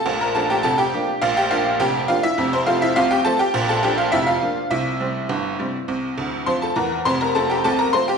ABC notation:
X:1
M:2/4
L:1/16
Q:1/4=103
K:F
V:1 name="Honky-tonk piano"
[Aa] [Bb] [Aa] [Gg] [Aa] [Gg]3 | [Ff] [Gg] [Ff]2 [Gg]2 [Ff] [Ee]- | [Ee] [Cc] [Ff] [Ee] [Ff] [Gg] [Aa] [Gg]- | [Gg] [Aa] [Gg] [Ff] [Ee] [Ff]3 |
[Ee]8- | [Ee]4 [cc'] [Aa] [Bb]2 | [cc'] [Bb] [Aa] [Gg] [Aa] [Bb] [cc'] [Gg] |]
V:2 name="Honky-tonk piano" clef=bass
[B,,,B,,]2 [F,B,D]2 [F,,,F,,]2 [F,B,D]2 | [B,,,B,,]2 [F,B,D]2 [F,,,F,,]2 [F,B,D]2 | [F,,,F,,]2 [F,A,C]2 [C,,C,]2 [F,A,C]2 | [B,,,B,,]2 [F,B,D]2 [F,,,F,,]2 [F,B,D]2 |
[C,,C,]2 [C,G,C]2 [G,,,G,,]2 [C,G,C]2 | [C,,C,]2 [D,,D,]2 [F,,F,]2 [E,,E,]2 | [F,,,F,,]2 [F,A,C]2 [C,,C,]2 [F,A,C]2 |]